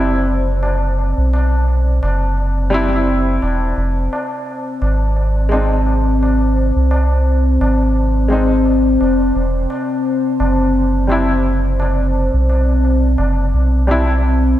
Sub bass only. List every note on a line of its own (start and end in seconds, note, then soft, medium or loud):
0.00 1.14 F#1 medium
1.18 2.00 B1 medium
2.03 3.39 F#1 medium
3.42 3.73 E1 medium
3.77 4.08 F1 loud
4.81 6.72 G#1 loud
6.76 7.58 C2 medium
7.61 8.97 G#1 medium
9.01 9.32 F1 medium
9.35 9.67 E1 loud
10.40 12.30 F#1 loud
12.34 13.16 B1 loud
13.18 13.53 F#1 loud
13.53 14.55 B1 medium